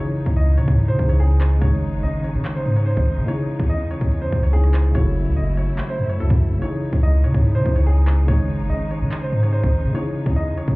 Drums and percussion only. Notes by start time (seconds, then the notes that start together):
0.26 kick, closed hi-hat
0.57 closed hi-hat
0.68 kick
0.78 closed hi-hat
0.99 kick
1.10 closed hi-hat
1.30 closed hi-hat
1.41 cross-stick, clap, open hi-hat
1.62 kick, closed hi-hat
1.93 closed hi-hat
2.24 closed hi-hat
2.45 clap, closed hi-hat
2.66 closed hi-hat
2.76 closed hi-hat
2.97 kick
3.07 closed hi-hat
3.14 closed hi-hat
3.21 closed hi-hat
3.28 closed hi-hat
3.60 kick, closed hi-hat
3.91 closed hi-hat
4.01 kick
4.12 closed hi-hat
4.32 kick
4.43 closed hi-hat
4.64 cross-stick, closed hi-hat
4.74 cross-stick, clap, closed hi-hat
4.95 kick, closed hi-hat
5.26 closed hi-hat
5.57 closed hi-hat
5.78 clap, closed hi-hat
5.99 closed hi-hat
6.09 closed hi-hat
6.30 kick
6.41 closed hi-hat
6.48 closed hi-hat
6.55 closed hi-hat
6.62 closed hi-hat
6.93 kick, closed hi-hat
7.24 closed hi-hat
7.34 kick
7.45 closed hi-hat
7.66 kick
7.76 closed hi-hat
7.97 closed hi-hat
8.07 cross-stick, clap, open hi-hat
8.28 kick, closed hi-hat
8.59 closed hi-hat
8.91 closed hi-hat
9.12 clap, closed hi-hat
9.32 closed hi-hat
9.43 closed hi-hat
9.64 kick
9.74 closed hi-hat
9.81 closed hi-hat
9.88 closed hi-hat
9.95 closed hi-hat
10.26 kick, closed hi-hat
10.57 closed hi-hat
10.68 kick